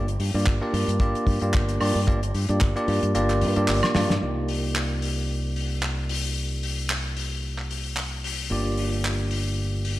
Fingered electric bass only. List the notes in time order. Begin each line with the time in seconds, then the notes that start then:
Already playing: G1
0.20 G2
0.34 G2
0.47 G1
0.73 G2
0.88 G2
1.00 G1
1.27 G2
1.42 G2
1.54 G1
1.81 G2
1.95 G2
2.08 G1
2.34 G2
2.49 G2
2.62 G1
2.88 G2
3.03 G2
3.15 G1
3.42 G2
3.57 G2
3.69 G1
3.96 G2
4.10 G2
4.22 C2
8.51 G1